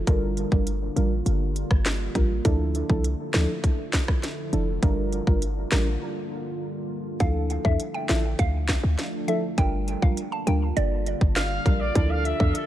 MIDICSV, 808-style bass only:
0, 0, Header, 1, 2, 480
1, 0, Start_track
1, 0, Key_signature, -1, "minor"
1, 0, Tempo, 594059
1, 59, Time_signature, 4, 2, 24, 8
1, 10232, End_track
2, 0, Start_track
2, 0, Title_t, "808-style bass"
2, 0, Program_c, 0, 38
2, 59, Note_on_c, 0, 31, 102
2, 366, Note_off_c, 0, 31, 0
2, 419, Note_on_c, 0, 31, 96
2, 726, Note_off_c, 0, 31, 0
2, 778, Note_on_c, 0, 33, 90
2, 983, Note_off_c, 0, 33, 0
2, 1018, Note_on_c, 0, 31, 108
2, 1326, Note_off_c, 0, 31, 0
2, 1379, Note_on_c, 0, 31, 85
2, 1686, Note_off_c, 0, 31, 0
2, 1739, Note_on_c, 0, 33, 88
2, 1944, Note_off_c, 0, 33, 0
2, 1980, Note_on_c, 0, 38, 107
2, 2287, Note_off_c, 0, 38, 0
2, 2340, Note_on_c, 0, 36, 85
2, 2544, Note_off_c, 0, 36, 0
2, 2699, Note_on_c, 0, 38, 93
2, 2801, Note_off_c, 0, 38, 0
2, 3659, Note_on_c, 0, 29, 83
2, 3864, Note_off_c, 0, 29, 0
2, 3899, Note_on_c, 0, 31, 104
2, 4206, Note_off_c, 0, 31, 0
2, 4260, Note_on_c, 0, 31, 103
2, 4566, Note_off_c, 0, 31, 0
2, 4620, Note_on_c, 0, 33, 89
2, 4824, Note_off_c, 0, 33, 0
2, 5819, Note_on_c, 0, 38, 108
2, 6126, Note_off_c, 0, 38, 0
2, 6179, Note_on_c, 0, 40, 93
2, 6282, Note_off_c, 0, 40, 0
2, 6539, Note_on_c, 0, 33, 84
2, 6744, Note_off_c, 0, 33, 0
2, 6779, Note_on_c, 0, 38, 110
2, 7086, Note_off_c, 0, 38, 0
2, 7138, Note_on_c, 0, 38, 93
2, 7241, Note_off_c, 0, 38, 0
2, 7739, Note_on_c, 0, 31, 111
2, 8046, Note_off_c, 0, 31, 0
2, 8099, Note_on_c, 0, 34, 89
2, 8202, Note_off_c, 0, 34, 0
2, 8459, Note_on_c, 0, 38, 91
2, 8664, Note_off_c, 0, 38, 0
2, 8699, Note_on_c, 0, 31, 110
2, 9006, Note_off_c, 0, 31, 0
2, 9059, Note_on_c, 0, 31, 89
2, 9366, Note_off_c, 0, 31, 0
2, 9419, Note_on_c, 0, 34, 86
2, 9624, Note_off_c, 0, 34, 0
2, 9659, Note_on_c, 0, 38, 110
2, 9966, Note_off_c, 0, 38, 0
2, 10019, Note_on_c, 0, 40, 95
2, 10122, Note_off_c, 0, 40, 0
2, 10232, End_track
0, 0, End_of_file